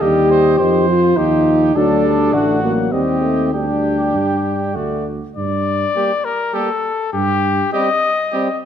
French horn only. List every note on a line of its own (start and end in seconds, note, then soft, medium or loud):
0.02 0.87 G4 medium
0.88 1.18 F4 medium
1.16 1.76 D#4 medium
1.75 2.63 D4 medium
2.63 2.94 A#3 medium
2.92 3.53 C4 medium
3.54 4.74 D4 medium
5.96 6.12 A#3 soft
6.54 6.71 A#3 soft
7.73 7.89 C4 medium
8.33 8.49 C4 medium